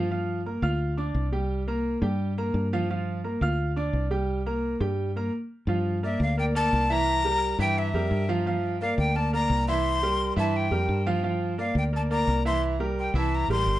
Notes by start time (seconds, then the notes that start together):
Already playing: G2
0.11 F3 F4 F5
0.46 A#3 A#4 A#5
0.62 D2 F4 F5 F6
0.97 D4 D5 D6
1.14 C2
1.32 G3 G4 G5
1.68 A#3 A#4 A#5
2.02 G2 G3 G4 G5
2.38 A#3 A#4 A#5
2.54 G2
2.73 F3 F4 F5
2.90 F3 F4 F5
3.24 A#3 A#4 A#5
3.41 D2 F4 F5 F6
3.76 D4 D5 D6
3.93 C2
4.11 G3 G4 G5
4.46 A#3 A#4 A#5
4.80 G2 G3 G4 G5
5.16 A#3 A#4 A#5
5.67 G2 F3 F4 F5
6.03 A#3 A#4 D5 E5
6.20 D2 F5
6.37 A#3 A#4 D5 G5
6.55 A#3 A#4 D5 A5
6.73 C2
6.90 E3 E4 E5 A#5
7.25 G3 G4 A#4
7.59 G2 E3 E4 E5 G5
7.78 E5
7.94 F2 G3 G4 A#4
8.11 G2
8.29 F3 F4 F5
8.46 F3 F4 F5
8.81 A#3 A#4 D5 F5
8.98 D2 G5
9.15 A#3 A#4 D5 A5
9.33 A#3 A#4 D5 A#5
9.50 C2
9.68 E3 E4 E5 C6
10.03 G3 G4 A#4
10.36 G2 E3 E4 E5 A5
10.56 G5
10.71 F2 G3 G4 A#4
10.89 G2
11.06 F3 F4 F5
11.24 F3 F4 F5
11.58 A#3 A#4 D5 F5
11.75 D2 G5
11.93 A#3 A#4 D5 A5
12.10 A#3 A#4 D5 A#5
12.27 C2
12.45 E3 E4 E5 C6
12.80 G3 G4 A#4
12.99 G5
13.14 C2 E3 E4 E5 A5
13.35 A#5
13.48 A1 G3 G4 A#4 C6
13.66 G1